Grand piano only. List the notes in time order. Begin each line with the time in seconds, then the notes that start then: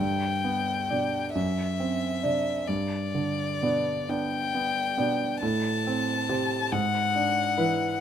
0.00 G2
0.44 B3
0.90 D4 D5
1.35 F#2
1.80 C4
2.23 D4 D5
2.69 G2
3.15 D3
3.63 B3 D4 D5
4.09 B3 D4 D5
4.55 B3
4.97 B3 D4 D5
5.42 A2
5.87 C4
6.29 G4 C5
6.72 G#2
7.15 D4
7.58 E4 B4